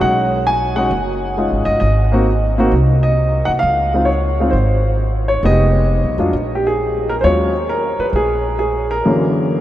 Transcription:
0.00 0.88 B1 medium
0.00 0.44 G#3 medium
0.00 0.44 C#4 medium
0.00 0.44 D#4 medium
0.00 0.45 F#4 medium
0.00 0.48 F#5 medium
0.47 0.75 G#5 medium
0.76 0.90 G#3 medium
0.76 0.90 C#4 soft
0.76 0.91 D#4 soft
0.76 0.91 F#4 medium
0.76 1.33 F#5 medium
0.91 1.48 F#1 medium
1.37 1.82 G#3 soft
1.37 1.83 C#4 soft
1.37 1.83 D#4 soft
1.37 1.83 F4 soft
1.52 1.66 G#1 soft
1.65 1.81 G1 medium
1.65 1.78 D#5 medium
1.80 2.68 G#1 medium
1.80 2.53 D#5 medium
2.12 2.25 A#3 medium
2.12 2.26 C4 medium
2.12 2.26 D#4 medium
2.12 2.27 F#4 medium
2.58 2.71 A#3 medium
2.58 2.71 C4 medium
2.58 2.72 D#4 medium
2.58 2.72 F#4 medium
2.71 3.44 C2 medium
3.03 3.50 D#5 medium
3.45 3.62 C2 medium
3.45 3.50 F#5 medium
3.59 4.49 C#2 medium
3.59 4.03 F5 medium
3.94 4.07 G#3 soft
3.94 4.07 C4 soft
3.94 4.07 D#4 soft
3.94 4.08 F4 medium
4.05 4.53 C#5 medium
4.40 4.53 G#3 soft
4.40 4.53 C4 soft
4.40 4.53 D#4 soft
4.40 4.53 F4 medium
4.51 5.39 G#1 medium
4.51 4.94 C5 medium
5.28 5.42 C#5 medium
5.43 5.99 F1 medium
5.43 6.13 G#3 medium
5.43 6.13 B3 soft
5.43 6.14 D#4 soft
5.43 6.14 G4 medium
5.43 6.16 D#5 medium
6.03 6.17 B1 medium
6.18 6.32 F2 medium
6.18 6.32 F#3 medium
6.18 6.32 G#3 soft
6.18 6.33 D4 soft
6.18 6.33 F4 medium
6.33 7.20 A#1 medium
6.55 6.64 G4 medium
6.67 7.08 G#4 medium
7.09 7.14 A#4 medium
7.21 7.95 D#2 medium
7.21 7.51 F#3 soft
7.21 7.52 G#3 soft
7.21 7.52 C#4 soft
7.21 7.25 C5 medium
7.21 7.66 C#5 medium
7.25 7.52 F4 medium
7.69 7.98 A#4 medium
7.99 8.05 B4 medium
7.99 muted upright bass stroke soft
8.13 9.00 A#1 medium
8.13 8.57 G#4 medium
8.59 8.91 G#4 medium
8.91 9.61 A#4 medium
9.05 9.61 F#2 medium
9.05 9.61 D3 soft
9.05 9.61 E3 soft
9.05 9.61 A#3 soft
9.05 9.61 C#4 medium

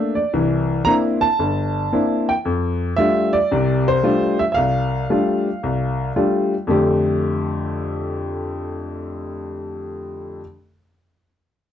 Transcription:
0.00 0.18 A3 medium
0.00 0.18 A#3 soft
0.00 0.19 D4 medium
0.00 0.12 E5 medium
0.15 0.31 D5 medium
0.33 0.79 C2 medium
0.33 0.80 E3 medium
0.85 1.24 A#3 medium
0.85 1.25 C4 soft
0.85 1.25 D4 soft
0.85 1.25 E4 medium
0.85 0.93 A#5 loud
1.21 2.31 A5 medium
1.39 1.85 G1 medium
1.93 2.30 A#3 medium
1.93 2.30 C4 soft
1.93 2.30 D4 soft
1.93 2.30 E4 medium
2.29 2.34 G5 medium
2.45 2.91 F2 medium
2.96 3.36 G3 soft
2.96 3.36 A3 soft
2.96 3.36 D4 soft
2.96 3.36 F4 medium
2.96 3.34 E5 medium
3.33 3.83 D5 medium
3.51 3.97 C2 medium
3.51 3.97 C3 medium
3.88 4.37 C5 loud
4.03 4.41 G3 soft
4.03 4.41 A3 medium
4.03 4.42 D4 soft
4.03 4.42 F4 medium
4.39 4.44 E5 medium
4.52 4.56 E5 medium
4.52 6.10 F5 medium
4.56 5.02 C2 medium
5.10 5.47 G3 soft
5.10 5.47 A3 soft
5.10 5.48 D4 soft
5.10 5.48 F4 medium
5.63 6.09 C2 medium
6.16 6.53 G3 medium
6.16 6.53 A3 soft
6.16 6.53 D4 soft
6.16 6.53 F4 medium
6.67 10.38 F2 medium
6.67 10.39 D3 medium
6.67 10.40 A3 medium
6.67 10.41 G4 medium

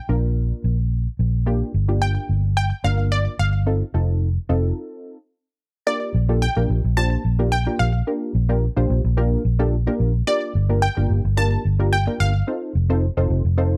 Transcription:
0.00 1.15 G5 medium
0.09 0.51 A#1 medium
0.09 0.77 A#3 medium
0.09 0.77 D4 medium
0.09 0.77 F4 medium
0.09 0.77 A#4 medium
0.64 1.06 A#1 medium
1.19 1.61 A#1 medium
1.46 1.72 A#3 medium
1.46 1.72 D4 medium
1.46 1.72 F4 medium
1.46 1.72 G4 loud
1.74 2.16 G1 loud
1.88 2.47 A#3 medium
1.88 2.47 D4 medium
1.88 2.48 F4 medium
1.88 2.48 G4 medium
2.02 2.56 G5 loud
2.29 2.71 G1 medium
2.57 2.82 G5 loud
2.84 3.26 G1 medium
2.84 3.35 A#3 medium
2.84 3.35 D4 medium
2.84 3.35 F4 medium
2.84 3.35 A#4 medium
2.84 3.10 F5 loud
3.12 3.24 D5 loud
3.39 3.81 G1 medium
3.39 5.01 F5 medium
3.66 3.84 C4 medium
3.66 3.84 D#4 medium
3.66 3.84 F4 medium
3.66 3.84 A4 medium
3.94 4.37 F1 loud
3.94 4.28 C4 medium
3.94 4.28 D#4 medium
3.94 4.29 F4 medium
3.94 4.29 A4 medium
4.49 4.71 F1 medium
4.49 5.18 C4 medium
4.49 5.18 D#4 medium
4.49 5.18 F4 medium
4.49 5.18 A4 loud
5.87 6.12 A#3 medium
5.87 6.12 D4 medium
5.87 6.12 F4 medium
5.87 6.12 G4 medium
5.87 6.13 A#4 medium
5.87 6.44 D5 loud
6.15 6.47 A#1 loud
6.29 6.45 A#3 medium
6.29 6.45 D4 medium
6.29 6.45 F4 medium
6.29 6.45 G4 medium
6.29 6.45 A4 medium
6.42 6.99 G5 loud
6.56 6.67 A#1 medium
6.56 6.82 A#3 medium
6.56 6.82 D4 medium
6.56 6.82 F4 medium
6.56 6.82 G4 medium
6.56 6.82 A#4 medium
6.70 6.81 A#1 loud
6.84 7.15 A#1 loud
6.97 7.22 A#3 medium
6.97 7.23 D4 medium
6.97 7.23 F4 medium
6.97 7.23 G4 medium
6.97 7.23 C5 medium
6.97 7.54 A5 loud
7.25 7.67 A#1 medium
7.39 7.55 A#3 medium
7.39 7.55 D4 medium
7.39 7.55 F4 medium
7.39 7.56 G4 medium
7.39 7.56 A#4 medium
7.52 7.80 G5 loud
7.66 7.92 A#3 medium
7.66 7.92 D4 medium
7.66 7.92 F4 medium
7.66 7.92 G4 medium
7.66 7.92 A#4 medium
7.79 8.01 A#1 medium
7.79 9.41 F5 medium
8.07 8.33 A#3 medium
8.07 8.33 D4 medium
8.07 8.33 F4 medium
8.07 8.33 G4 medium
8.07 8.33 A#4 medium
8.35 8.67 A#1 loud
8.49 8.65 A#3 medium
8.49 8.65 D4 medium
8.49 8.66 F4 medium
8.49 8.66 G4 medium
8.49 8.66 A#4 medium
8.76 8.87 A#1 medium
8.76 9.02 A#3 medium
8.76 9.02 D4 medium
8.76 9.02 F4 medium
8.76 9.02 G4 medium
8.76 9.02 C5 loud
8.90 9.01 A#1 loud
9.04 9.35 A#1 loud
9.17 9.43 A#3 medium
9.17 9.43 D4 medium
9.17 9.43 F4 medium
9.17 9.43 G4 medium
9.17 9.43 A#4 loud
9.45 9.87 A#1 medium
9.59 9.75 A#3 loud
9.59 9.76 D4 medium
9.59 9.76 F4 medium
9.59 9.76 G4 medium
9.59 9.76 A4 loud
9.87 10.12 A#3 medium
9.87 10.12 D4 medium
9.87 10.12 F4 medium
9.87 10.12 G4 medium
9.87 10.12 A#4 loud
10.00 10.21 A#1 medium
10.27 10.53 A#3 medium
10.27 10.53 D4 medium
10.27 10.53 F4 medium
10.27 10.53 G4 medium
10.27 10.53 A#4 medium
10.27 10.79 D5 loud
10.55 10.87 G1 loud
10.69 10.86 A#3 medium
10.69 10.86 D4 medium
10.69 10.86 F4 medium
10.69 10.86 G4 medium
10.69 10.86 A#4 medium
10.82 11.33 G5 loud
10.97 11.07 G1 medium
10.97 11.22 A#3 medium
10.97 11.22 D4 medium
10.97 11.22 F4 medium
10.97 11.22 G4 medium
10.97 11.22 A#4 medium
11.10 11.21 G1 loud
11.25 11.56 G1 loud
11.37 11.63 A#3 medium
11.37 11.63 D4 medium
11.37 11.63 F4 medium
11.37 11.63 G4 medium
11.37 11.63 A#4 medium
11.37 11.94 A5 loud
11.65 12.07 G1 medium
11.79 11.96 A#3 medium
11.79 11.96 D4 medium
11.79 11.96 F4 medium
11.79 11.96 G4 medium
11.79 11.96 A#4 medium
11.93 12.21 G5 loud
12.07 12.32 A#3 medium
12.07 12.32 D4 medium
12.07 12.32 F4 medium
12.07 12.32 G4 medium
12.07 12.32 A#4 medium
12.20 12.41 G1 medium
12.20 13.77 F5 medium
12.47 12.73 C4 medium
12.47 12.73 D#4 medium
12.47 12.73 F4 medium
12.47 12.73 A4 medium
12.47 12.73 C5 medium
12.75 13.07 F1 loud
12.90 13.06 C4 medium
12.90 13.06 D#4 medium
12.90 13.06 F4 medium
12.90 13.06 A4 medium
12.90 13.06 C5 loud
13.17 13.27 F1 medium
13.17 13.42 C4 loud
13.17 13.42 D#4 medium
13.17 13.42 F4 medium
13.17 13.42 A4 medium
13.17 13.43 C5 loud
13.30 13.41 F1 loud
13.45 13.76 F1 loud
13.58 13.77 C4 medium
13.58 13.77 D#4 medium
13.58 13.77 F4 medium
13.58 13.77 A4 medium
13.58 13.77 C5 loud

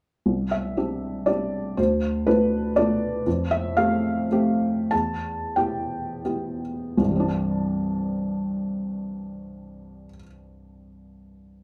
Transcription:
0.26 0.76 C2 soft
0.51 1.27 E5 medium
0.77 1.23 C4 soft
0.77 1.24 D4 soft
0.77 1.24 G4 soft
1.26 1.73 C4 soft
1.26 1.73 D4 soft
1.26 1.74 G4 soft
1.26 1.77 D5 medium
1.77 2.26 D2 soft
1.77 2.27 C5 medium
2.27 2.72 A3 soft
2.27 2.73 D4 soft
2.27 2.73 F4 soft
2.27 2.76 B4 medium
2.76 3.22 A3 soft
2.76 3.23 D4 soft
2.76 3.23 F4 soft
2.76 3.26 D5 medium
3.26 3.75 F2 soft
3.51 3.77 E5 medium
3.77 4.27 A3 soft
3.77 4.27 C4 soft
3.77 4.28 G4 soft
3.77 4.91 F5 medium
4.31 4.88 A3 soft
4.31 4.88 C4 soft
4.31 4.88 G4 soft
4.91 5.55 E2 soft
4.91 5.56 A5 medium
5.56 6.21 B3 soft
5.56 6.21 E4 soft
5.56 6.21 G4 soft
5.56 6.61 G5 medium
6.25 6.94 B3 soft
6.25 6.94 E4 soft
6.25 6.95 G4 soft
6.97 10.05 C2 medium
7.02 10.09 G2 soft
7.06 10.13 E3 soft
7.11 10.18 G3 soft
7.16 10.23 C4 soft
7.20 10.27 D4 soft

